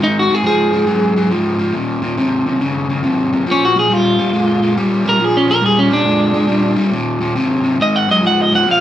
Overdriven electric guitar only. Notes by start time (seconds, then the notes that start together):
0.00 G#2 D#3
0.30 G#2 D#3
0.43 G#2 F3
0.72 G#2 F3
0.86 G#2 F#3
1.16 G#2 F#3
1.30 G#2 F3
1.59 G#2 F3
1.73 D#2 A#2
2.02 D#2 A#2
2.17 D#2 C3
2.46 D#2 C3
2.60 D#2 C#3
2.90 D#2 C#3
3.03 D#2 C3
3.33 D#2 C3
3.46 A#2 F3
3.76 A#2 F3
3.90 A#2 G3
4.19 A#2 G3
4.33 A#2 G#3
4.62 A#2 G#3
4.77 A#2 G3
5.05 A#2 G3
5.19 A#2 F3
5.47 A#2 F3
5.62 A#2 G3
5.90 A#2 G3
6.05 A#2 G#3
6.33 A#2 G#3
6.47 A#2 G3
6.76 A#2 G3
6.91 D#2 A#2
7.21 D#2 A#2
7.35 D#2 C3
7.64 D#2 C3
7.80 G#2 D#3
8.08 G#2 F#3
8.22 G#2 F3
8.51 G#2 F3
8.66 A#2 F3